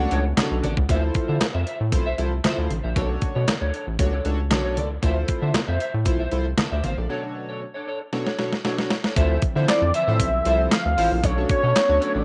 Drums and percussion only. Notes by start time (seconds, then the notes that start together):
0.11 closed hi-hat
0.37 snare, clap, closed hi-hat, high conga
0.64 closed hi-hat, high conga
0.77 kick
0.89 kick, closed hi-hat, muted conga
1.14 kick, closed hi-hat, muted conga
1.41 snare, clap, closed hi-hat, high conga
1.67 closed hi-hat
1.92 kick, closed hi-hat, muted conga, low conga
2.18 closed hi-hat
2.44 snare, clap, closed hi-hat, high conga
2.70 closed hi-hat, high conga
2.96 kick, closed hi-hat, muted conga
3.22 kick, closed hi-hat, muted conga
3.48 snare, clap, closed hi-hat, high conga
3.74 closed hi-hat
3.99 kick, closed hi-hat, muted conga, low conga
4.25 closed hi-hat
4.51 snare, clap, closed hi-hat, high conga
4.77 closed hi-hat, high conga
5.03 kick, closed hi-hat, muted conga
5.28 kick, closed hi-hat
5.54 snare, clap, closed hi-hat, high conga
5.80 closed hi-hat
6.05 kick, closed hi-hat, muted conga, low conga
6.31 closed hi-hat
6.58 snare, clap, closed hi-hat, high conga
6.84 closed hi-hat, high conga
8.13 snare
8.27 snare
8.39 snare
8.53 snare
8.65 snare
8.78 snare
8.90 snare
9.04 snare
9.16 kick, closed hi-hat
9.42 kick, closed hi-hat
9.68 snare, clap, closed hi-hat
9.94 closed hi-hat
10.20 kick, closed hi-hat
10.45 closed hi-hat
10.72 snare, clap, closed hi-hat
10.98 open hi-hat
11.24 kick, closed hi-hat
11.49 kick, closed hi-hat
11.76 snare, clap, closed hi-hat
12.02 closed hi-hat